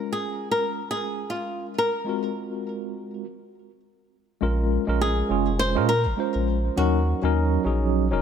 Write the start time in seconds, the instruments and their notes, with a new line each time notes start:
Already playing: tine electric piano G#3 C#4 F4 A#4, nylon-string guitar A#4
0.12 nylon-string guitar G#4
0.51 nylon-string guitar A#4
0.91 nylon-string guitar G#4
1.30 nylon-string guitar F4
1.78 nylon-string guitar A#4
2.04 tine electric piano G#3 C4 F4 F#4
2.09 tine electric piano A#4
4.41 sub bass A#1, tine electric piano G#3 C#4 F4 A#4
4.87 sub bass A#1, tine electric piano G#3 C#4 F4 A#4
5.01 nylon-string guitar G#4
5.29 sub bass F1, tine electric piano G#3 C#4 F4 G#4
5.59 nylon-string guitar C5
5.75 sub bass A#2, tine electric piano G#3 C#4 F4 A#4
5.89 nylon-string guitar A#4
6.06 sub bass G#1
6.17 tine electric piano G#3 C#4 F4 C5
6.36 sub bass A#1
6.76 sub bass D#2, tine electric piano F#3 C#4 D#4 A#4, nylon-string guitar F#4
7.22 sub bass D#2, tine electric piano F#3 C#4 D#4 A#4
7.64 sub bass A#1, tine electric piano F#3 C#4 D#4 G#4
8.11 sub bass D#1, tine electric piano F#3 C#4 D#4 A#4